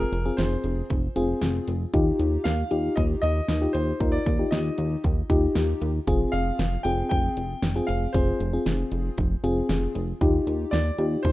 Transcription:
Already playing: fm electric piano C4 F4 G#4
0.00 grand piano A#4
0.12 analog synth bass F1, closed hi-hat
0.25 fm electric piano C4 F4 G#4
0.37 analog synth bass F1, grand piano C5, snare, closed hi-hat
0.64 analog synth bass F1, closed hi-hat
0.90 analog synth bass F1, kick, closed hi-hat
1.16 analog synth bass F1, fm electric piano C4 F4 G#4, closed hi-hat
1.42 analog synth bass F1, snare, closed hi-hat
1.68 analog synth bass F1, closed hi-hat
1.94 analog synth bass D#2, fm electric piano D#4 F4 G4, kick, closed hi-hat
2.19 analog synth bass D#2, closed hi-hat
2.44 analog synth bass D#2, grand piano F5, snare, closed hi-hat
2.71 analog synth bass D#2, fm electric piano D#4 F4 G4, closed hi-hat
2.96 analog synth bass D#2, grand piano D#5, kick, closed hi-hat
3.22 analog synth bass D#2, grand piano D#5, closed hi-hat
3.48 analog synth bass D#2, snare, closed hi-hat
3.62 fm electric piano D#4 F4 G4
3.73 analog synth bass D#2, grand piano C5, closed hi-hat
4.00 analog synth bass D#2, fm electric piano D#4 F4 A#4, kick, closed hi-hat
4.12 grand piano D5
4.26 analog synth bass D#2, kick, closed hi-hat
4.39 fm electric piano D#4 F4 G4
4.51 analog synth bass D#2, grand piano D#5, snare, closed hi-hat
4.78 analog synth bass D#2, closed hi-hat
5.04 analog synth bass D#2, kick, closed hi-hat
5.30 analog synth bass D#2, fm electric piano D#4 F4 G4, kick, closed hi-hat
5.55 analog synth bass D#2, snare, closed hi-hat
5.82 analog synth bass D#2, closed hi-hat
6.07 analog synth bass F1, fm electric piano C4 F4 G#4, kick, closed hi-hat
6.32 analog synth bass F1, grand piano F5, closed hi-hat
6.59 analog synth bass F1, snare, closed hi-hat
6.83 analog synth bass F1, fm electric piano C4 F4 G#4, grand piano G5, closed hi-hat
7.09 analog synth bass F1, grand piano G5, kick, closed hi-hat
7.37 analog synth bass F1, closed hi-hat
7.62 analog synth bass F1, snare, closed hi-hat
7.76 fm electric piano C4 F4 G#4
7.87 analog synth bass F1, grand piano F5, closed hi-hat
8.13 analog synth bass F1, fm electric piano C4 F4 G#4, grand piano C5, kick, closed hi-hat
8.40 analog synth bass F1, closed hi-hat
8.53 fm electric piano C4 F4 G#4
8.66 analog synth bass F1, snare, closed hi-hat
8.92 analog synth bass F1, closed hi-hat
9.18 analog synth bass F1, kick, closed hi-hat
9.44 analog synth bass F1, fm electric piano C4 F4 G#4, closed hi-hat
9.69 analog synth bass F1, snare, closed hi-hat
9.95 analog synth bass F1, closed hi-hat
10.21 analog synth bass D#2, fm electric piano D#4 F4 G4, kick, closed hi-hat
10.47 analog synth bass D#2, closed hi-hat
10.71 analog synth bass D#2, grand piano D5, snare, closed hi-hat
10.98 analog synth bass D#2, fm electric piano D#4 F4 G4, closed hi-hat
11.23 analog synth bass D#2, grand piano C5, kick, closed hi-hat

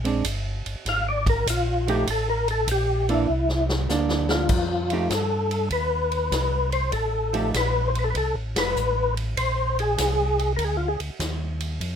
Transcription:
Already playing: tonewheel organ A#1
0.04 hollow-body jazz guitar G#3 C4 D4, ride
0.24 tonewheel organ G1, kick, hi-hat pedal, ride
0.66 tonewheel organ G1, ride
0.85 tonewheel organ G#1 F5, kick, snare, ride
1.09 tonewheel organ D5
1.26 tonewheel organ A#4, kick, ride
1.46 tonewheel organ A#1 F4, kick, hi-hat pedal, ride
1.87 hollow-body jazz guitar F3 A3 D#4 G4, tonewheel organ G4, ride
2.07 tonewheel organ A1 A4, kick, ride
2.29 tonewheel organ A#4
2.48 tonewheel organ A4, ride
2.67 tonewheel organ A#1, kick, hi-hat pedal, ride
2.71 tonewheel organ G4
3.09 hollow-body jazz guitar E3 A#3 D4, tonewheel organ E4, ride
3.29 tonewheel organ C2
3.49 snare
3.69 snare
3.89 tonewheel organ D2, hollow-body jazz guitar A#3 D4, snare, hi-hat pedal
4.09 snare
4.29 tonewheel organ F4, snare
4.49 tonewheel organ F2, kick, crash
4.90 hollow-body jazz guitar F3 A3 D#4 G4, ride
5.10 tonewheel organ G2 A4, kick, snare, hi-hat pedal, ride
5.51 ride
5.70 tonewheel organ D#2 B4, kick, ride
6.12 ride
6.32 tonewheel organ C2, kick, snare, hi-hat pedal, ride
6.72 tonewheel organ C5, ride
6.92 tonewheel organ A1 A4, kick, ride
7.33 hollow-body jazz guitar F3 A3 D#4 G4, ride
7.54 tonewheel organ A#1 B4, kick, snare, hi-hat pedal, ride
7.88 tonewheel organ C5
7.95 tonewheel organ B4, ride
8.04 tonewheel organ A4
8.10 tonewheel organ B4
8.15 tonewheel organ C2 A4, kick, ride
8.35 tonewheel organ A1
8.55 tonewheel organ F1 B4, snare, ride
8.76 tonewheel organ A1, hi-hat pedal
9.17 ride
9.37 tonewheel organ A#1 C5, kick, ride
9.79 tonewheel organ G#4, ride
9.98 tonewheel organ C2, kick, snare, hi-hat pedal, ride
10.39 ride
10.56 tonewheel organ D2 A#4, kick, ride
10.65 tonewheel organ G#4
10.77 tonewheel organ F4
10.88 tonewheel organ G#4
11.00 tonewheel organ D2, ride
11.19 tonewheel organ D#2, kick, snare, hi-hat pedal, ride
11.60 ride
11.80 tonewheel organ F2, kick, ride

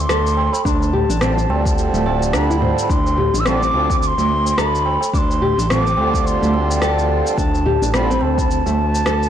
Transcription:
0.00 bansuri C6
0.09 analog synth bass D2, nylon-string guitar A4, cross-stick, shaker
0.27 shaker
0.37 tabla na
0.53 bansuri B5, tabla na, tabla tin, shaker
0.65 analog synth bass D2, nylon-string guitar D4, bansuri A5 B5, kick, shaker
0.81 tabla tin, shaker
0.93 nylon-string guitar G4, mid tom
1.09 analog synth bass A1, nylon-string guitar D4, shaker
1.20 harmonium D3 G3 C4 F4 A4, nylon-string guitar C4, cross-stick, mid tom, shaker
1.37 nylon-string guitar C4, tabla tin, shaker
1.48 analog synth bass D2, harmonium D3 F3 G3 C4, tabla na
1.52 harmonium A4
1.66 kick, tabla tin, shaker
1.78 shaker
1.93 analog synth bass D1, nylon-string guitar A3, shaker
2.06 nylon-string guitar D5, tabla na
2.23 shaker
2.33 analog synth bass D2, nylon-string guitar D4, bansuri A#5, cross-stick, shaker
2.44 bansuri B5
2.50 nylon-string guitar E4, shaker
2.62 nylon-string guitar C5, tabla ge
2.79 tabla na, shaker
2.90 analog synth bass D2, nylon-string guitar D4, bansuri C6, kick, shaker
3.06 tabla tin, shaker
3.18 nylon-string guitar G4, mid tom
3.34 analog synth bass A1, nylon-string guitar D4, shaker
3.40 bansuri E6
3.45 harmonium D3 G3 C4 F4 A4, nylon-string guitar C4, bansuri D6, cross-stick, mid tom, shaker
3.62 nylon-string guitar C4, tabla tin, shaker
3.73 analog synth bass D2, harmonium D3 G3 C4 F4 A4, tabla na
3.90 kick, tabla tin, shaker
4.02 bansuri D6, shaker
4.07 bansuri C6
4.18 analog synth bass D2, nylon-string guitar A3, tabla na, shaker
4.45 tabla tin, shaker
4.58 analog synth bass D2, nylon-string guitar A4, bansuri B5, cross-stick, shaker
4.75 shaker
4.86 tabla na
5.01 tabla na, tabla tin, shaker
5.14 analog synth bass D2, nylon-string guitar D4, bansuri D6, kick, shaker
5.18 bansuri C6
5.30 tabla tin, shaker
5.42 nylon-string guitar G4, mid tom
5.58 analog synth bass A1, nylon-string guitar D4, shaker
5.68 harmonium D3 G3 C4 F4 A4, nylon-string guitar C4, bansuri D6, cross-stick, mid tom, shaker
5.86 nylon-string guitar C4, tabla tin, shaker
5.95 analog synth bass D2, harmonium D3 G3 C4 F4, tabla na
5.99 harmonium A4
6.14 kick, tabla tin, shaker
6.26 bansuri C6, shaker
6.42 analog synth bass D2, nylon-string guitar A3, shaker
6.54 tabla na
6.71 shaker
6.82 analog synth bass D2, nylon-string guitar A4, bansuri G5, cross-stick, shaker
6.99 shaker
7.26 tabla na, shaker
7.38 analog synth bass D2, nylon-string guitar D4, bansuri A5, kick, shaker
7.53 tabla tin, shaker
7.66 nylon-string guitar G4, mid tom
7.82 analog synth bass A1, nylon-string guitar D4, shaker
7.93 harmonium D3 G3 C4 F4 A4, nylon-string guitar C4, bansuri B5, cross-stick, mid tom, shaker
8.10 nylon-string guitar C4, tabla tin, shaker
8.21 analog synth bass D2, bansuri A5, tabla na
8.38 kick, tabla tin, shaker
8.51 shaker
8.66 analog synth bass D2, nylon-string guitar A3, tabla na, shaker
8.94 tabla tin, shaker
9.06 analog synth bass D2, nylon-string guitar A4, cross-stick, shaker
9.23 shaker

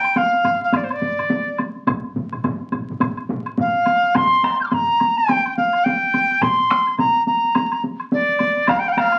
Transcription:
Already playing: dizi G5
0.04 high woodblock
0.16 dizi F5, taiko high, high woodblock
0.33 taiko high
0.44 taiko low-mid, taiko high, high woodblock
0.61 dizi F5, taiko high
0.73 dizi D5, taiko low-mid, taiko high, high woodblock
0.84 dizi C5
0.90 dizi D5, taiko high, high woodblock
1.02 taiko low-mid, taiko high
1.19 taiko low-mid, high woodblock
1.30 taiko high
1.47 taiko high
1.58 taiko high, high woodblock
1.76 taiko high
1.87 taiko, taiko low-mid, taiko mid, taiko high, high woodblock
2.04 taiko high
2.16 taiko low-mid, taiko mid, taiko high
2.32 taiko low-mid, taiko mid, taiko high, high woodblock
2.44 taiko low-mid, taiko mid, taiko high, high woodblock
2.61 taiko high
2.72 taiko, taiko low-mid, taiko mid, taiko high, high woodblock
2.90 taiko low-mid, taiko mid, taiko high
3.00 taiko, taiko low-mid, taiko mid, taiko high, high woodblock
3.17 taiko high, high woodblock
3.29 taiko low-mid, taiko mid, taiko high
3.46 high woodblock
3.58 dizi F5, taiko low-mid, taiko mid, taiko high
3.75 taiko high
3.86 taiko high, high woodblock
4.04 taiko high
4.15 dizi C6, taiko, taiko low-mid, taiko high, high woodblock
4.33 taiko high
4.43 taiko rim, taiko high
4.60 dizi F6 G6, taiko high, high woodblock
4.66 dizi C6 D6
4.71 dizi A#5, taiko low-mid, taiko high, high woodblock
4.89 taiko high
5.00 taiko high, high woodblock
5.18 dizi G5, taiko high
5.28 taiko high, high woodblock
5.46 taiko high, high woodblock
5.57 dizi F5, taiko high
5.73 high woodblock
5.84 dizi G5, taiko high
6.03 taiko high
6.14 taiko high, high woodblock
6.31 taiko high
6.42 dizi C6, taiko, taiko mid, taiko high, high woodblock
6.60 taiko high
6.71 taiko rim, taiko high
6.87 taiko high, high woodblock
6.98 dizi A#5, taiko mid, taiko high, high woodblock
7.16 taiko high
7.27 dizi A#5, taiko high
7.44 taiko high
7.55 taiko high, high woodblock
7.72 taiko high, high woodblock
7.84 taiko high
8.00 high woodblock
8.12 dizi D5, taiko high
8.29 taiko high
8.39 taiko high, high woodblock
8.57 taiko high
8.67 dizi F5, taiko rim, taiko, taiko high, high woodblock
8.79 dizi G5
8.85 dizi F5, taiko high
8.92 dizi G5
8.97 dizi F5, taiko rim, taiko high
9.12 taiko high, high woodblock

